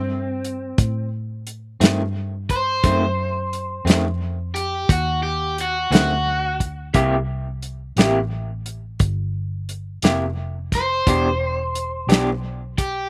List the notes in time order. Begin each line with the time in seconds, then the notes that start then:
Already playing: G2 C4
0.45 closed hi-hat
0.78 A2, kick, closed hi-hat
1.47 closed hi-hat
1.80 F2 G2 D#3 A3 C4, snare, closed hi-hat
2.50 C5, kick, closed hi-hat
2.84 F#2 D#3 A3 C4, kick, closed hi-hat
3.53 closed hi-hat
3.85 F2 F#2 D#3 A3 C4, closed hi-hat
3.90 snare
4.55 G4, closed hi-hat
4.89 D#2 F#4, kick, closed hi-hat
5.23 G4
5.58 F#4, closed hi-hat
5.91 D2 F#2 D#3 A3 C4 F#4, closed hi-hat
5.95 snare
6.60 kick, closed hi-hat
6.94 C2 C3 A#3 E4 G4, kick, closed hi-hat
7.62 closed hi-hat
7.96 A1 C3 A#3 E4 G4, snare, closed hi-hat
8.66 closed hi-hat
8.99 G1, kick, closed hi-hat
9.69 closed hi-hat
10.02 F1 C3 A#3 E4 G4, snare, closed hi-hat
10.72 C5, kick, snare, closed hi-hat
11.07 E1 E3 B3 D4 G4, kick, closed hi-hat
11.75 closed hi-hat
12.07 B1 E3 B3 D4 G4, closed hi-hat
12.12 snare
12.78 G4, kick, closed hi-hat